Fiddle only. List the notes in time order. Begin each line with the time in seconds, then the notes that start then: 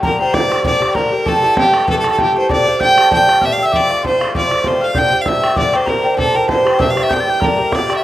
0.05 A#4
0.20 C5
0.34 D5
0.66 D5
0.95 A#4
1.28 A4
1.60 G4
1.91 A4
1.99 A4
2.12 A4
2.22 G4
2.38 C5
2.52 D5
2.82 G5
3.14 G5
3.45 E5
3.52 F5
3.65 E5
3.76 D5
4.07 C5
4.38 D5
4.67 C5
4.84 F5
4.99 G5
5.21 F5
5.28 E5
5.59 D5
5.75 C5
5.89 A#4
6.19 A4
6.36 A#4
6.49 C5
6.82 E5
6.90 F5
7.03 E5
7.12 G5
7.44 A#4
7.75 D5
7.96 E5